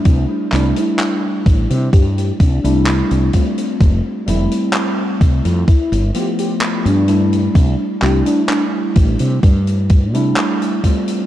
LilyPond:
<<
  \new Staff \with { instrumentName = "Soft synth lead" } { \time 4/4 \key c \major \tempo 4 = 64 r8. e'8 r8. g'16 g'16 d'4 r8 | r2 e'8 g'16 g'16 r16 d'8 r16 | r8 g'16 d'16 d'16 r2 r8. | }
  \new Staff \with { instrumentName = "Tine electric piano" } { \time 4/4 \key c \major <g a d' e'>8 <g a d' e'>2~ <g a d' e'>16 <g a d' e'>8. <g a c' f'>8~ | <g a c' f'>8 <g a c' e'>4. r8 <f a b f'>4 <g a d' e'>8~ | <g a d' e'>8 <g a d' e'>2~ <g a d' e'>16 <g a d' e'>8. <g a c' f'>8 | }
  \new Staff \with { instrumentName = "Fretless electric bass" } { \clef bass \time 4/4 \key c \major c,16 r16 c,16 r8. a,,16 c16 g,8 c,16 c,8 c,16 r8 | f,,16 r16 f,,16 r8. c,16 f,16 r16 g,,16 r8. g,8. | c,16 r16 c,16 r8. a,,16 c16 g,8. c16 r4 | }
  \new DrumStaff \with { instrumentName = "Drums" } \drummode { \time 4/4 <hh bd>8 <hc hh>16 hh16 <hc hh>8 <hh bd>16 hh16 <hh bd>16 hh16 <hh bd>16 hh16 <hc hh>16 hh16 <hh bd>16 hh16 | <hh bd>8 hh16 hh16 <hc hh>8 <hh bd>16 hh16 <hh bd>16 hh16 hh16 hh16 <hc hh>16 hh16 hh16 hh16 | <hh bd>8 <hc hh>16 hh16 <hc hh>8 <hh bd>16 hh16 <hh bd>16 hh16 <hh bd>16 hh16 <hc hh>16 hh16 <hh bd>16 hh16 | }
>>